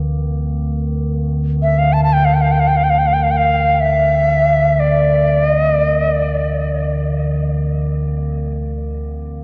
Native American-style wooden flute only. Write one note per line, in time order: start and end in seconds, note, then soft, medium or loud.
1.62 1.80 E5 medium
1.78 1.94 F5 medium
1.93 2.03 A5 medium
2.04 2.15 A5 medium
2.13 2.26 G5 medium
2.25 2.35 F5 medium
2.34 2.43 G5 medium
2.41 2.53 F5 medium
2.52 2.61 G5 medium
2.60 2.69 F5 medium
2.67 2.78 G5 medium
2.76 2.85 F5 medium
2.84 2.91 G5 medium
2.90 3.00 F5 medium
2.98 3.08 G5 medium
3.07 3.15 F5 medium
3.13 3.24 G5 medium
3.23 3.32 F5 medium
3.31 3.38 G5 medium
3.37 3.82 F5 medium
3.80 4.81 E5 medium
4.80 5.53 D5 medium
5.53 5.73 D#5 medium
5.73 5.94 D5 medium
5.94 6.14 D#5 medium
6.14 6.85 D5 medium